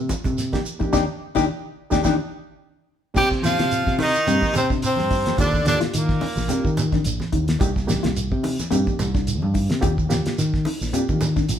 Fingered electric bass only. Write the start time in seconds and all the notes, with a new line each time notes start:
0.26 C3
0.94 D#2
1.37 D#2
1.92 D#2
2.05 D#2
3.16 C3
3.60 C3
3.87 C3
4.28 G2
4.56 C3
4.98 G2
5.27 F2
5.38 D#2
5.66 D#2
5.82 muted fingered electric bass stroke
5.94 D#3
6.37 A#1
6.65 D#3
7.05 A#1
7.33 D#2
7.61 C2
8.05 C2
8.32 C3
8.72 G2
8.99 C2
9.43 G2
9.70 C3
9.83 D#2
10.11 D#2
10.26 muted fingered electric bass stroke
10.38 D#3
10.81 A#1
11.09 D#3
11.49 A#1